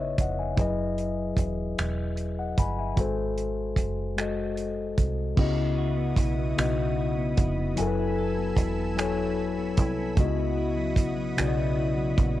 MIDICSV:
0, 0, Header, 1, 6, 480
1, 0, Start_track
1, 0, Key_signature, 4, "minor"
1, 0, Tempo, 800000
1, 344, Time_signature, 6, 3, 24, 8
1, 7440, End_track
2, 0, Start_track
2, 0, Title_t, "Analog synth pad"
2, 0, Program_c, 0, 89
2, 3223, Note_on_c, 0, 83, 72
2, 3226, Note_on_c, 0, 66, 79
2, 3227, Note_on_c, 0, 64, 73
2, 3229, Note_on_c, 0, 87, 86
2, 4651, Note_off_c, 0, 64, 0
2, 4651, Note_off_c, 0, 66, 0
2, 4652, Note_off_c, 0, 87, 0
2, 4667, Note_on_c, 0, 88, 83
2, 4668, Note_on_c, 0, 80, 72
2, 4670, Note_on_c, 0, 69, 81
2, 6091, Note_off_c, 0, 88, 0
2, 6092, Note_off_c, 0, 80, 0
2, 6093, Note_off_c, 0, 69, 0
2, 6111, Note_on_c, 0, 64, 69
2, 6111, Note_on_c, 0, 87, 94
2, 6114, Note_on_c, 0, 66, 77
2, 7440, Note_off_c, 0, 64, 0
2, 7440, Note_off_c, 0, 66, 0
2, 7440, Note_off_c, 0, 83, 0
2, 7440, Note_off_c, 0, 87, 0
2, 7440, End_track
3, 0, Start_track
3, 0, Title_t, "Tine electric piano"
3, 0, Program_c, 1, 4
3, 0, Control_c, 1, 64, 127
3, 0, Note_on_c, 1, 49, 78
3, 0, Note_on_c, 1, 59, 67
3, 0, Note_on_c, 1, 63, 54
3, 0, Note_on_c, 1, 64, 73
3, 0, Note_on_c, 1, 71, 49
3, 0, Note_on_c, 1, 73, 55
3, 0, Note_on_c, 1, 75, 55
3, 0, Note_on_c, 1, 76, 58
3, 1, Note_off_c, 1, 73, 0
3, 1, Note_on_c, 1, 73, 52
3, 105, Note_off_c, 1, 76, 0
3, 107, Note_off_c, 1, 73, 0
3, 122, Note_on_c, 1, 78, 60
3, 123, Note_off_c, 1, 75, 0
3, 123, Note_on_c, 1, 75, 51
3, 228, Note_off_c, 1, 75, 0
3, 228, Note_off_c, 1, 78, 0
3, 234, Note_on_c, 1, 80, 54
3, 239, Note_on_c, 1, 76, 43
3, 336, Note_on_c, 1, 54, 79
3, 341, Note_off_c, 1, 64, 0
3, 341, Note_on_c, 1, 64, 71
3, 351, Control_c, 1, 64, 0
3, 351, Note_on_c, 1, 68, 69
3, 354, Note_off_c, 1, 71, 0
3, 355, Note_off_c, 1, 49, 0
3, 355, Note_off_c, 1, 59, 0
3, 355, Note_off_c, 1, 63, 0
3, 357, Note_on_c, 1, 71, 67
3, 364, Note_on_c, 1, 75, 86
3, 440, Control_c, 1, 64, 127
3, 457, Note_off_c, 1, 80, 0
3, 460, Note_off_c, 1, 76, 0
3, 849, Note_off_c, 1, 54, 0
3, 852, Note_off_c, 1, 64, 0
3, 856, Note_off_c, 1, 68, 0
3, 860, Note_off_c, 1, 71, 0
3, 863, Note_off_c, 1, 75, 0
3, 1434, Note_on_c, 1, 78, 56
3, 1437, Note_on_c, 1, 75, 45
3, 1544, Note_off_c, 1, 78, 0
3, 1545, Note_off_c, 1, 75, 0
3, 1554, Note_on_c, 1, 83, 59
3, 1558, Note_on_c, 1, 80, 55
3, 1664, Note_off_c, 1, 83, 0
3, 1666, Note_off_c, 1, 80, 0
3, 1672, Note_on_c, 1, 80, 53
3, 1678, Note_on_c, 1, 76, 47
3, 1776, Note_on_c, 1, 56, 73
3, 1782, Note_on_c, 1, 66, 68
3, 1793, Control_c, 1, 64, 0
3, 1795, Note_on_c, 1, 69, 73
3, 1803, Note_on_c, 1, 72, 84
3, 1896, Note_off_c, 1, 80, 0
3, 1900, Note_off_c, 1, 76, 0
3, 1912, Control_c, 1, 64, 127
3, 2289, Note_off_c, 1, 56, 0
3, 2292, Note_off_c, 1, 66, 0
3, 2299, Note_off_c, 1, 69, 0
3, 2303, Note_off_c, 1, 72, 0
3, 2499, Note_on_c, 1, 56, 62
3, 2508, Note_on_c, 1, 66, 59
3, 2515, Note_on_c, 1, 69, 55
3, 2528, Note_on_c, 1, 75, 66
3, 3010, Note_off_c, 1, 56, 0
3, 3015, Note_off_c, 1, 66, 0
3, 3019, Note_off_c, 1, 69, 0
3, 3025, Note_off_c, 1, 75, 0
3, 3217, Note_on_c, 1, 49, 88
3, 3224, Note_on_c, 1, 59, 79
3, 3231, Note_on_c, 1, 64, 77
3, 3233, Control_c, 1, 64, 0
3, 3238, Note_on_c, 1, 66, 76
3, 3244, Note_on_c, 1, 75, 93
3, 3325, Control_c, 1, 64, 127
3, 3730, Note_off_c, 1, 49, 0
3, 3733, Note_off_c, 1, 59, 0
3, 3737, Note_off_c, 1, 64, 0
3, 3740, Note_off_c, 1, 66, 0
3, 3743, Note_off_c, 1, 75, 0
3, 3937, Note_on_c, 1, 49, 70
3, 3943, Note_on_c, 1, 59, 60
3, 3951, Note_on_c, 1, 63, 46
3, 3958, Note_on_c, 1, 66, 61
3, 3965, Note_on_c, 1, 75, 72
3, 3987, Note_off_c, 1, 63, 0
3, 3989, Note_on_c, 1, 64, 57
3, 4450, Note_off_c, 1, 49, 0
3, 4453, Note_off_c, 1, 59, 0
3, 4460, Note_off_c, 1, 66, 0
3, 4464, Note_off_c, 1, 75, 0
3, 4476, Note_off_c, 1, 64, 0
3, 4654, Note_on_c, 1, 54, 88
3, 4660, Note_on_c, 1, 64, 77
3, 4667, Note_on_c, 1, 80, 80
3, 4672, Control_c, 1, 64, 0
3, 4676, Note_on_c, 1, 69, 80
3, 4682, Note_on_c, 1, 70, 78
3, 4712, Note_off_c, 1, 70, 0
3, 4723, Note_on_c, 1, 71, 92
3, 4782, Control_c, 1, 64, 127
3, 5168, Note_off_c, 1, 54, 0
3, 5171, Note_off_c, 1, 64, 0
3, 5175, Note_off_c, 1, 80, 0
3, 5179, Note_off_c, 1, 69, 0
3, 5203, Note_off_c, 1, 71, 0
3, 5376, Note_on_c, 1, 54, 71
3, 5381, Note_on_c, 1, 64, 59
3, 5386, Note_on_c, 1, 80, 63
3, 5397, Note_on_c, 1, 69, 63
3, 5404, Note_on_c, 1, 73, 76
3, 5889, Note_off_c, 1, 54, 0
3, 5892, Note_off_c, 1, 64, 0
3, 5894, Note_off_c, 1, 80, 0
3, 5900, Note_off_c, 1, 69, 0
3, 5903, Note_off_c, 1, 73, 0
3, 6091, Note_on_c, 1, 49, 90
3, 6100, Note_on_c, 1, 59, 79
3, 6106, Note_on_c, 1, 63, 66
3, 6112, Control_c, 1, 64, 0
3, 6116, Note_on_c, 1, 66, 86
3, 6122, Note_on_c, 1, 75, 94
3, 6144, Note_off_c, 1, 63, 0
3, 6147, Note_on_c, 1, 64, 78
3, 6209, Control_c, 1, 64, 127
3, 6607, Note_off_c, 1, 49, 0
3, 6611, Note_off_c, 1, 59, 0
3, 6619, Note_off_c, 1, 66, 0
3, 6622, Note_off_c, 1, 75, 0
3, 6635, Note_off_c, 1, 64, 0
3, 6820, Note_on_c, 1, 49, 67
3, 6826, Note_on_c, 1, 59, 63
3, 6834, Note_on_c, 1, 64, 67
3, 6841, Note_on_c, 1, 66, 69
3, 6849, Note_on_c, 1, 74, 60
3, 6876, Note_off_c, 1, 74, 0
3, 6888, Note_on_c, 1, 75, 80
3, 7331, Note_off_c, 1, 49, 0
3, 7334, Note_off_c, 1, 59, 0
3, 7338, Note_off_c, 1, 64, 0
3, 7342, Note_off_c, 1, 66, 0
3, 7365, Note_off_c, 1, 75, 0
3, 7440, End_track
4, 0, Start_track
4, 0, Title_t, "Clean electric guitar"
4, 0, Program_c, 2, 27
4, 3233, Note_on_c, 2, 49, 73
4, 3351, Note_on_c, 2, 64, 54
4, 3470, Note_on_c, 2, 66, 60
4, 3584, Note_on_c, 2, 59, 64
4, 3702, Note_off_c, 2, 64, 0
4, 3705, Note_on_c, 2, 64, 61
4, 3828, Note_off_c, 2, 59, 0
4, 3831, Note_on_c, 2, 59, 55
4, 3938, Note_off_c, 2, 49, 0
4, 3945, Note_on_c, 2, 49, 74
4, 4066, Note_off_c, 2, 64, 0
4, 4069, Note_on_c, 2, 64, 55
4, 4188, Note_off_c, 2, 66, 0
4, 4191, Note_on_c, 2, 66, 64
4, 4306, Note_off_c, 2, 59, 0
4, 4308, Note_on_c, 2, 59, 62
4, 4432, Note_off_c, 2, 64, 0
4, 4434, Note_on_c, 2, 64, 60
4, 4553, Note_off_c, 2, 59, 0
4, 4556, Note_on_c, 2, 59, 56
4, 4670, Note_on_c, 2, 54, 75
4, 4713, Note_off_c, 2, 49, 0
4, 4792, Note_off_c, 2, 64, 0
4, 4794, Note_on_c, 2, 64, 54
4, 4812, Note_off_c, 2, 66, 0
4, 4911, Note_on_c, 2, 69, 63
4, 4929, Note_off_c, 2, 59, 0
4, 5028, Note_on_c, 2, 59, 65
4, 5140, Note_off_c, 2, 64, 0
4, 5143, Note_on_c, 2, 64, 64
4, 5263, Note_off_c, 2, 59, 0
4, 5266, Note_on_c, 2, 59, 60
4, 5379, Note_off_c, 2, 54, 0
4, 5381, Note_on_c, 2, 54, 73
4, 5498, Note_off_c, 2, 64, 0
4, 5501, Note_on_c, 2, 64, 55
4, 5617, Note_off_c, 2, 69, 0
4, 5625, Note_on_c, 2, 69, 64
4, 5747, Note_off_c, 2, 59, 0
4, 5749, Note_on_c, 2, 59, 63
4, 5865, Note_off_c, 2, 64, 0
4, 5867, Note_on_c, 2, 64, 61
4, 5984, Note_off_c, 2, 59, 0
4, 5987, Note_on_c, 2, 59, 59
4, 6103, Note_on_c, 2, 49, 78
4, 6153, Note_off_c, 2, 69, 0
4, 6230, Note_off_c, 2, 59, 0
4, 6232, Note_on_c, 2, 59, 56
4, 6344, Note_off_c, 2, 64, 0
4, 6346, Note_on_c, 2, 64, 69
4, 6364, Note_off_c, 2, 54, 0
4, 6457, Note_on_c, 2, 54, 70
4, 6573, Note_off_c, 2, 59, 0
4, 6575, Note_on_c, 2, 59, 65
4, 6692, Note_off_c, 2, 54, 0
4, 6695, Note_on_c, 2, 54, 58
4, 6814, Note_off_c, 2, 49, 0
4, 6822, Note_on_c, 2, 49, 72
4, 6942, Note_off_c, 2, 59, 0
4, 6944, Note_on_c, 2, 59, 56
4, 7051, Note_off_c, 2, 64, 0
4, 7058, Note_on_c, 2, 64, 65
4, 7172, Note_off_c, 2, 54, 0
4, 7174, Note_on_c, 2, 54, 66
4, 7295, Note_off_c, 2, 59, 0
4, 7298, Note_on_c, 2, 59, 61
4, 7417, Note_off_c, 2, 54, 0
4, 7419, Note_on_c, 2, 54, 55
4, 7440, Note_off_c, 2, 49, 0
4, 7440, Note_off_c, 2, 54, 0
4, 7440, Note_off_c, 2, 59, 0
4, 7440, Note_off_c, 2, 64, 0
4, 7440, End_track
5, 0, Start_track
5, 0, Title_t, "Fingered electric bass"
5, 0, Program_c, 3, 33
5, 0, Note_on_c, 3, 32, 76
5, 87, Note_off_c, 3, 32, 0
5, 115, Note_on_c, 3, 29, 81
5, 326, Note_off_c, 3, 29, 0
5, 351, Note_on_c, 3, 30, 86
5, 804, Note_off_c, 3, 30, 0
5, 826, Note_on_c, 3, 28, 72
5, 1041, Note_off_c, 3, 28, 0
5, 1072, Note_on_c, 3, 28, 73
5, 1524, Note_off_c, 3, 28, 0
5, 1551, Note_on_c, 3, 31, 79
5, 1764, Note_off_c, 3, 31, 0
5, 1791, Note_on_c, 3, 32, 84
5, 2244, Note_off_c, 3, 32, 0
5, 2264, Note_on_c, 3, 30, 72
5, 2960, Note_off_c, 3, 30, 0
5, 2994, Note_on_c, 3, 36, 74
5, 3206, Note_off_c, 3, 36, 0
5, 3232, Note_on_c, 3, 37, 94
5, 3684, Note_off_c, 3, 37, 0
5, 3706, Note_on_c, 3, 35, 78
5, 3922, Note_off_c, 3, 35, 0
5, 3950, Note_on_c, 3, 35, 95
5, 4403, Note_off_c, 3, 35, 0
5, 4433, Note_on_c, 3, 29, 88
5, 4645, Note_off_c, 3, 29, 0
5, 4677, Note_on_c, 3, 30, 97
5, 5127, Note_off_c, 3, 30, 0
5, 5144, Note_on_c, 3, 28, 93
5, 5872, Note_off_c, 3, 28, 0
5, 5872, Note_on_c, 3, 36, 82
5, 6085, Note_off_c, 3, 36, 0
5, 6108, Note_on_c, 3, 37, 111
5, 6584, Note_off_c, 3, 37, 0
5, 6584, Note_on_c, 3, 35, 94
5, 6800, Note_off_c, 3, 35, 0
5, 6836, Note_on_c, 3, 35, 93
5, 7286, Note_off_c, 3, 35, 0
5, 7312, Note_on_c, 3, 34, 88
5, 7440, Note_off_c, 3, 34, 0
5, 7440, End_track
6, 0, Start_track
6, 0, Title_t, "Drums"
6, 108, Note_on_c, 9, 36, 84
6, 108, Note_on_c, 9, 42, 67
6, 168, Note_off_c, 9, 36, 0
6, 168, Note_off_c, 9, 42, 0
6, 344, Note_on_c, 9, 36, 102
6, 344, Note_on_c, 9, 42, 71
6, 404, Note_off_c, 9, 36, 0
6, 404, Note_off_c, 9, 42, 0
6, 587, Note_on_c, 9, 42, 45
6, 647, Note_off_c, 9, 42, 0
6, 819, Note_on_c, 9, 36, 76
6, 825, Note_on_c, 9, 42, 69
6, 879, Note_off_c, 9, 36, 0
6, 885, Note_off_c, 9, 42, 0
6, 1071, Note_on_c, 9, 42, 54
6, 1073, Note_on_c, 9, 26, 79
6, 1131, Note_off_c, 9, 42, 0
6, 1133, Note_off_c, 9, 26, 0
6, 1303, Note_on_c, 9, 42, 44
6, 1363, Note_off_c, 9, 42, 0
6, 1546, Note_on_c, 9, 36, 86
6, 1547, Note_on_c, 9, 42, 69
6, 1606, Note_off_c, 9, 36, 0
6, 1607, Note_off_c, 9, 42, 0
6, 1782, Note_on_c, 9, 42, 68
6, 1783, Note_on_c, 9, 36, 94
6, 1842, Note_off_c, 9, 42, 0
6, 1843, Note_off_c, 9, 36, 0
6, 2025, Note_on_c, 9, 42, 47
6, 2085, Note_off_c, 9, 42, 0
6, 2258, Note_on_c, 9, 36, 73
6, 2263, Note_on_c, 9, 42, 71
6, 2318, Note_off_c, 9, 36, 0
6, 2323, Note_off_c, 9, 42, 0
6, 2509, Note_on_c, 9, 42, 55
6, 2511, Note_on_c, 9, 26, 78
6, 2569, Note_off_c, 9, 42, 0
6, 2571, Note_off_c, 9, 26, 0
6, 2745, Note_on_c, 9, 42, 44
6, 2805, Note_off_c, 9, 42, 0
6, 2988, Note_on_c, 9, 36, 84
6, 2988, Note_on_c, 9, 42, 63
6, 3048, Note_off_c, 9, 36, 0
6, 3048, Note_off_c, 9, 42, 0
6, 3224, Note_on_c, 9, 36, 119
6, 3226, Note_on_c, 9, 49, 96
6, 3284, Note_off_c, 9, 36, 0
6, 3286, Note_off_c, 9, 49, 0
6, 3699, Note_on_c, 9, 36, 79
6, 3704, Note_on_c, 9, 42, 78
6, 3759, Note_off_c, 9, 36, 0
6, 3764, Note_off_c, 9, 42, 0
6, 3950, Note_on_c, 9, 42, 63
6, 3952, Note_on_c, 9, 26, 95
6, 4010, Note_off_c, 9, 42, 0
6, 4012, Note_off_c, 9, 26, 0
6, 4425, Note_on_c, 9, 42, 75
6, 4426, Note_on_c, 9, 36, 95
6, 4485, Note_off_c, 9, 42, 0
6, 4486, Note_off_c, 9, 36, 0
6, 4662, Note_on_c, 9, 42, 82
6, 4722, Note_off_c, 9, 42, 0
6, 5139, Note_on_c, 9, 36, 90
6, 5144, Note_on_c, 9, 42, 78
6, 5199, Note_off_c, 9, 36, 0
6, 5204, Note_off_c, 9, 42, 0
6, 5391, Note_on_c, 9, 42, 61
6, 5393, Note_on_c, 9, 26, 99
6, 5451, Note_off_c, 9, 42, 0
6, 5453, Note_off_c, 9, 26, 0
6, 5864, Note_on_c, 9, 42, 81
6, 5866, Note_on_c, 9, 36, 94
6, 5924, Note_off_c, 9, 42, 0
6, 5926, Note_off_c, 9, 36, 0
6, 6102, Note_on_c, 9, 36, 117
6, 6102, Note_on_c, 9, 42, 75
6, 6162, Note_off_c, 9, 36, 0
6, 6162, Note_off_c, 9, 42, 0
6, 6578, Note_on_c, 9, 36, 89
6, 6584, Note_on_c, 9, 42, 83
6, 6638, Note_off_c, 9, 36, 0
6, 6644, Note_off_c, 9, 42, 0
6, 6828, Note_on_c, 9, 42, 69
6, 6830, Note_on_c, 9, 26, 95
6, 6888, Note_off_c, 9, 42, 0
6, 6890, Note_off_c, 9, 26, 0
6, 7307, Note_on_c, 9, 36, 100
6, 7308, Note_on_c, 9, 42, 75
6, 7367, Note_off_c, 9, 36, 0
6, 7368, Note_off_c, 9, 42, 0
6, 7440, End_track
0, 0, End_of_file